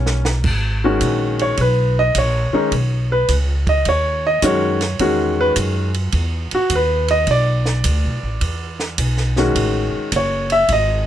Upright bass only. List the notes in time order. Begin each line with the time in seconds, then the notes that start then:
Already playing: B1
0.44 G#1
1.01 A#1
1.58 B1
2.15 A#1
2.53 muted upright bass stroke
2.72 B1
3.29 C#2
3.86 D#2
4.42 F#2
5.00 E2
5.56 F#2
6.13 E2
6.52 muted upright bass stroke
6.70 D#2
7.27 B1
7.84 D2
8.05 B1
8.23 A1
8.41 E2
8.98 B1
9.55 A1
9.94 muted upright bass stroke
10.12 F#1
10.68 G#1